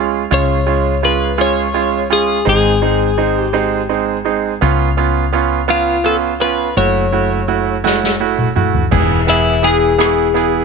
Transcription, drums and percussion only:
7.86 snare
8.04 snare
8.38 mid tom
8.56 mid tom
8.74 floor tom
8.92 kick, crash
9.28 closed hi-hat
9.64 closed hi-hat
10.00 cross-stick, closed hi-hat
10.36 closed hi-hat

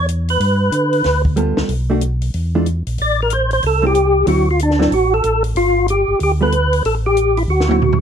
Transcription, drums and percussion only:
0.08 closed hi-hat
0.28 open hi-hat
0.40 open hi-hat
0.72 closed hi-hat
0.93 open hi-hat
1.04 snare, open hi-hat
1.25 kick
1.37 closed hi-hat
1.57 snare
1.69 open hi-hat
2.01 closed hi-hat
2.22 open hi-hat
2.34 open hi-hat
2.66 closed hi-hat
2.87 open hi-hat
2.98 open hi-hat
3.30 closed hi-hat
3.51 open hi-hat
3.63 open hi-hat
3.95 closed hi-hat
4.27 open hi-hat
4.59 closed hi-hat
4.71 snare
4.81 snare
4.92 open hi-hat
5.24 closed hi-hat
5.44 open hi-hat
5.56 open hi-hat
5.88 closed hi-hat
6.20 open hi-hat
6.52 closed hi-hat
6.73 open hi-hat
6.85 open hi-hat
7.17 closed hi-hat
7.37 open hi-hat
7.60 snare
7.71 high tom
7.82 floor tom
7.93 floor tom

